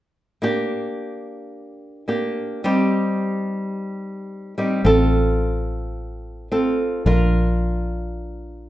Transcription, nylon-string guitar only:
0.42 2.05 A#3 medium
0.42 2.06 D4 soft
0.42 2.06 G4 medium
2.08 2.64 A#3 soft
2.08 2.64 D4 soft
2.08 2.64 G4 soft
2.64 4.54 G3 medium
2.64 4.54 C4 medium
2.64 4.54 D#4 medium
2.64 4.55 G4 medium
4.58 4.85 G3 soft
4.58 4.83 C4 soft
4.58 4.85 D#4 soft
4.58 4.86 G4 soft
4.85 6.47 C4 medium
4.85 6.48 F4 medium
4.85 6.48 A4 medium
6.52 7.06 C4 soft
6.52 7.06 F4 soft
6.52 7.07 A4 soft
7.06 8.69 D4 medium
7.06 8.69 F4 medium
7.06 8.69 A#4 medium

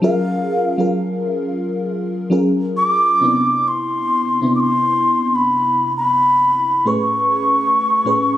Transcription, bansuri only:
0.04 0.90 F5 loud
2.77 3.69 D6 loud
3.68 4.53 C6 loud
4.56 4.62 D6 medium
4.60 5.37 C6 loud
5.35 5.95 B5 medium
5.97 6.89 B5 loud
6.87 8.37 C#6 medium

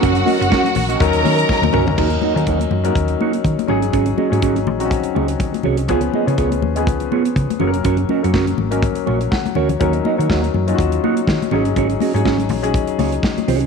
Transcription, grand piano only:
0.00 0.60 F#3 medium
0.00 0.61 A#3 medium
0.00 0.61 C#4 medium
0.00 0.61 A#4 medium
1.00 1.62 F#3 medium
1.00 1.63 C#4 medium
1.00 1.63 D#4 medium
1.00 1.63 A#4 medium
1.73 1.94 F#3 medium
1.73 1.94 C#4 medium
1.73 1.94 D#4 medium
1.73 1.95 A#4 medium
1.96 2.28 F#3 medium
1.96 2.29 C#4 medium
1.96 2.29 D#4 medium
1.96 2.29 A#4 medium
2.34 2.75 F#3 medium
2.34 2.75 C#4 medium
2.34 2.75 D#4 medium
2.34 2.75 A#4 medium
2.84 3.65 F#3 medium
2.84 3.65 C#4 medium
2.84 3.65 D#4 medium
2.84 3.65 A#4 medium
3.67 4.19 F#3 medium
3.67 4.20 C#4 medium
3.67 4.20 D#4 medium
3.67 4.20 G#4 medium
4.30 4.71 F#3 medium
4.30 4.71 C#4 medium
4.30 4.71 D#4 medium
4.30 4.71 G#4 medium
4.79 5.60 F#3 medium
4.79 4.85 C4 soft
4.79 5.61 D#4 medium
4.79 5.61 F#4 medium
4.85 5.63 C#4 medium
5.88 6.20 F3 medium
5.88 6.20 B3 medium
5.88 6.20 C#4 medium
5.88 6.21 G#4 medium
6.26 6.66 F3 medium
6.26 6.67 B3 medium
6.26 6.67 C#4 medium
6.26 6.67 G#4 medium
6.76 7.57 F3 medium
6.76 7.57 B3 medium
6.76 7.57 C#4 medium
6.76 7.57 G#4 medium
7.60 8.11 F#3 medium
7.60 8.12 A#3 medium
7.60 8.12 C#4 medium
7.60 7.68 G#4 medium
7.67 8.15 A#4 medium
8.23 8.63 F#3 medium
8.23 8.63 A#3 medium
8.23 8.63 C#4 medium
8.23 8.63 A#4 medium
8.71 9.52 F#3 medium
8.71 9.52 A#3 medium
8.71 9.52 C#4 medium
8.71 9.52 A#4 medium
9.31 9.54 F#5 medium
9.56 9.79 C#5 medium
9.80 10.12 F#3 medium
9.80 10.12 C#4 medium
9.80 10.12 D#4 medium
9.80 10.12 A#4 medium
10.17 10.58 F#3 medium
10.17 10.58 C#4 medium
10.17 10.58 D#4 medium
10.17 10.59 A#4 medium
10.67 11.48 F#3 medium
10.67 11.48 C#4 medium
10.67 11.49 D#4 medium
10.67 10.74 F4 medium
10.75 11.52 F#4 medium
11.52 12.03 F#3 medium
11.52 12.03 C#4 medium
11.52 12.04 D#4 medium
11.52 12.04 G#4 medium
12.14 12.54 F#3 medium
12.14 12.54 C#4 medium
12.14 12.54 D#4 medium
12.14 12.55 G#4 medium
12.62 13.43 F#3 medium
12.62 13.44 C#4 medium
12.62 13.44 D#4 medium
12.62 13.44 G#4 medium

